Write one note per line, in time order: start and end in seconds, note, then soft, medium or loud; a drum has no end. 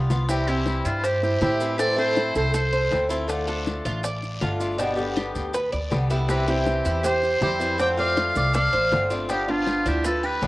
0.00 0.79 C2 medium
0.10 0.29 B3 medium
0.10 0.28 F4 medium
0.10 low bongo medium
0.10 short guiro medium
0.10 maracas medium
0.29 0.47 C3 medium
0.29 0.47 E3 medium
0.29 0.47 G3 medium
0.29 0.47 C4 medium
0.29 0.48 E4 medium
0.29 0.47 E4 medium
0.29 0.50 G4 medium
0.29 high bongo medium
0.29 long guiro medium
0.29 maracas medium
0.47 1.04 E3 medium
0.47 1.03 G3 medium
0.47 0.86 C4 medium
0.47 1.04 C4 medium
0.47 1.04 E4 medium
0.47 0.88 E4 medium
0.47 0.84 G4 medium
0.47 high bongo soft
0.47 maracas soft
0.66 high bongo medium
0.66 short guiro medium
0.66 maracas soft
0.85 1.37 G2 medium
0.85 1.04 D4 medium
0.85 1.03 E4 medium
0.85 1.06 F4 medium
0.85 high bongo soft
0.85 short guiro medium
0.85 maracas medium
1.04 1.22 E4 medium
1.04 1.23 G4 medium
1.04 1.40 C5 medium
1.04 muted steel-string acoustic guitar stroke medium
1.04 high bongo medium
1.04 long guiro medium
1.04 maracas medium
1.23 1.40 E4 medium
1.23 1.41 G4 medium
1.23 high bongo soft
1.23 maracas soft
1.41 2.29 A2 medium
1.41 1.59 E3 soft
1.41 1.60 G3 medium
1.41 1.60 C4 medium
1.41 1.78 E4 medium
1.41 1.77 E4 medium
1.41 1.59 E4 medium
1.41 1.77 G4 medium
1.41 high bongo soft
1.41 low bongo medium
1.41 short guiro medium
1.41 maracas soft
1.60 1.77 E3 medium
1.60 1.78 G3 medium
1.60 1.78 C4 medium
1.60 1.78 E4 medium
1.60 short guiro medium
1.60 maracas medium
1.78 1.96 E3 medium
1.78 1.96 A3 medium
1.78 1.96 C4 medium
1.78 2.15 C4 medium
1.78 1.95 E4 medium
1.78 1.97 A4 medium
1.78 1.97 D5 loud
1.78 high bongo medium
1.78 long guiro medium
1.78 maracas medium
1.96 2.54 A3 medium
1.96 2.53 C4 medium
1.96 2.53 E4 medium
1.96 2.33 A4 medium
1.96 2.33 C5 medium
1.96 high bongo soft
1.96 maracas soft
2.16 2.53 E4 medium
2.16 high bongo medium
2.16 short guiro medium
2.16 maracas soft
2.35 2.88 C2 medium
2.35 2.53 A4 medium
2.35 2.54 C5 loud
2.35 high bongo soft
2.35 short guiro medium
2.35 maracas medium
2.54 2.72 A4 medium
2.54 3.06 A4 medium
2.54 3.07 C5 medium
2.54 muted steel-string acoustic guitar stroke medium
2.54 high bongo medium
2.54 long guiro medium
2.54 maracas medium
2.72 3.09 C5 medium
2.72 high bongo soft
2.72 maracas soft
2.90 3.79 D2 medium
2.90 3.09 E3 medium
2.90 3.09 A3 medium
2.90 3.09 C4 soft
2.90 3.08 E4 medium
2.90 high bongo soft
2.90 low bongo medium
2.90 short guiro medium
2.90 maracas soft
3.09 3.27 A3 medium
3.09 3.28 C4 medium
3.09 3.28 E4 medium
3.09 3.47 F4 medium
3.09 short guiro medium
3.09 maracas medium
3.28 3.46 D3 medium
3.28 3.47 A3 medium
3.28 3.47 D4 medium
3.28 3.46 F4 medium
3.28 high bongo medium
3.28 long guiro medium
3.28 maracas medium
3.47 4.02 A3 medium
3.47 4.03 D4 medium
3.47 4.03 F4 medium
3.47 3.84 A4 medium
3.47 high bongo soft
3.47 maracas soft
3.66 high bongo medium
3.66 short guiro medium
3.66 maracas soft
3.85 4.38 A1 medium
3.85 4.03 F4 medium
3.85 high bongo soft
3.85 short guiro medium
3.85 maracas medium
4.03 4.40 D5 medium
4.03 muted steel-string acoustic guitar stroke medium
4.03 high bongo medium
4.03 long guiro medium
4.03 maracas medium
4.23 high bongo soft
4.23 maracas soft
4.41 5.29 G1 medium
4.41 4.59 D3 soft
4.41 4.60 A3 medium
4.41 4.59 D4 medium
4.41 4.78 F4 medium
4.41 4.59 F4 medium
4.41 high bongo soft
4.41 low bongo medium
4.41 short guiro medium
4.41 maracas soft
4.60 4.78 A3 medium
4.60 4.78 D4 medium
4.60 4.78 F4 medium
4.60 short guiro medium
4.60 maracas medium
4.78 4.97 B2 medium
4.78 4.97 D3 medium
4.78 4.96 G3 medium
4.78 4.96 B3 medium
4.78 5.15 D4 medium
4.78 4.95 G4 medium
4.78 high bongo medium
4.78 long guiro medium
4.78 maracas medium
4.96 5.52 D3 medium
4.96 5.53 G3 medium
4.96 5.53 B3 medium
4.96 5.54 G4 medium
4.96 high bongo soft
4.96 maracas soft
5.16 5.53 G4 medium
5.16 high bongo medium
5.16 short guiro medium
5.16 maracas soft
5.35 5.70 D2 medium
5.35 high bongo soft
5.35 short guiro medium
5.35 maracas medium
5.53 5.72 B4 medium
5.53 muted steel-string acoustic guitar stroke medium
5.53 high bongo medium
5.53 long guiro medium
5.53 maracas medium
5.72 5.90 D2 medium
5.72 6.09 D5 medium
5.72 high bongo soft
5.72 maracas soft
5.91 6.80 C2 medium
5.91 6.09 D3 medium
5.91 6.09 G3 medium
5.91 6.09 B3 medium
5.91 6.08 G4 medium
5.91 high bongo soft
5.91 low bongo medium
5.91 short guiro medium
5.91 maracas soft
6.10 6.28 D3 soft
6.10 6.28 G3 medium
6.10 6.28 B3 medium
6.10 6.47 E4 medium
6.10 6.28 G4 medium
6.10 short guiro medium
6.10 maracas medium
6.28 6.47 C3 medium
6.28 6.47 E3 medium
6.28 6.47 G3 medium
6.28 6.46 C4 medium
6.28 6.46 E4 medium
6.28 6.46 G4 medium
6.28 6.47 B4 medium
6.28 high bongo medium
6.28 long guiro medium
6.28 maracas medium
6.47 7.02 E3 medium
6.47 7.02 G3 medium
6.47 7.04 C4 medium
6.47 7.03 E4 medium
6.47 7.00 E4 medium
6.47 6.84 G4 medium
6.47 7.07 G4 medium
6.47 high bongo soft
6.47 maracas soft
6.66 high bongo medium
6.66 short guiro medium
6.66 maracas soft
6.85 7.38 E2 medium
6.85 7.04 E4 medium
6.85 high bongo soft
6.85 short guiro medium
6.85 maracas medium
7.03 7.41 G4 medium
7.03 7.41 C5 medium
7.03 7.42 C5 medium
7.03 muted steel-string acoustic guitar stroke medium
7.03 high bongo medium
7.03 long guiro medium
7.03 maracas medium
7.23 high bongo soft
7.23 maracas soft
7.41 8.29 F2 medium
7.41 7.59 E3 soft
7.41 7.60 G3 medium
7.41 7.59 C4 medium
7.41 7.78 E4 medium
7.41 7.58 E4 medium
7.41 7.77 G4 medium
7.41 7.77 C5 loud
7.41 high bongo soft
7.41 low bongo medium
7.41 short guiro medium
7.41 maracas soft
7.59 7.78 E3 medium
7.59 7.79 G3 medium
7.59 7.78 C4 medium
7.59 7.78 E4 medium
7.59 short guiro medium
7.59 maracas medium
7.78 7.97 D3 medium
7.78 7.97 A3 medium
7.78 8.16 C4 medium
7.78 7.97 C4 medium
7.78 7.96 F4 medium
7.78 7.85 D5 medium
7.78 7.89 G5 medium
7.78 high bongo medium
7.78 long guiro medium
7.78 maracas medium
7.97 8.52 A3 medium
7.97 8.53 C4 medium
7.97 8.54 F4 medium
7.97 8.34 D5 medium
7.97 8.34 F5 loud
7.97 high bongo soft
7.97 maracas soft
8.17 8.53 F4 medium
8.17 high bongo medium
8.17 short guiro medium
8.17 maracas soft
8.35 8.71 C2 medium
8.35 8.54 D5 medium
8.35 8.54 F5 loud
8.35 high bongo soft
8.35 short guiro medium
8.35 maracas medium
8.53 8.72 A4 medium
8.53 9.07 D5 medium
8.53 9.07 F5 loud
8.53 muted steel-string acoustic guitar stroke medium
8.53 high bongo medium
8.53 long guiro medium
8.53 maracas medium
8.73 8.91 A1 medium
8.73 9.09 C5 medium
8.73 high bongo soft
8.73 maracas soft
8.91 9.80 G1 medium
8.91 9.10 D3 medium
8.91 9.10 A3 medium
8.91 9.10 C4 medium
8.91 9.09 F4 medium
8.91 high bongo soft
8.91 low bongo medium
8.91 short guiro medium
8.91 maracas soft
9.10 9.28 A3 medium
9.10 9.29 C4 medium
9.10 9.47 D4 medium
9.10 9.28 F4 medium
9.10 short guiro medium
9.10 maracas medium
9.29 9.47 G3 medium
9.29 9.47 B3 medium
9.29 9.47 D4 medium
9.29 9.47 F4 medium
9.29 9.52 G4 medium
9.29 high bongo medium
9.29 long guiro medium
9.29 maracas medium
9.48 10.04 B3 medium
9.48 9.86 D4 medium
9.48 10.04 F4 medium
9.48 9.85 F4 medium
9.48 9.89 F4 medium
9.48 high bongo soft
9.48 maracas soft
9.67 high bongo medium
9.67 short guiro medium
9.67 maracas soft
9.86 10.38 D2 medium
9.86 10.04 D4 medium
9.86 10.05 E4 medium
9.86 10.06 G4 medium
9.86 high bongo soft
9.86 short guiro medium
9.86 maracas medium
10.04 10.23 F4 medium
10.04 10.27 A4 medium
10.04 10.41 B4 medium
10.04 muted steel-string acoustic guitar stroke medium
10.04 high bongo medium
10.04 long guiro medium
10.04 maracas medium
10.23 10.47 G4 medium
10.23 10.47 B4 medium
10.23 high bongo soft
10.23 maracas soft
10.42 10.47 C2 medium
10.42 10.47 G3 medium
10.42 10.47 B3 medium
10.42 10.47 D4 medium
10.42 10.47 F4 medium
10.42 high bongo soft
10.42 low bongo medium
10.42 short guiro medium
10.42 maracas soft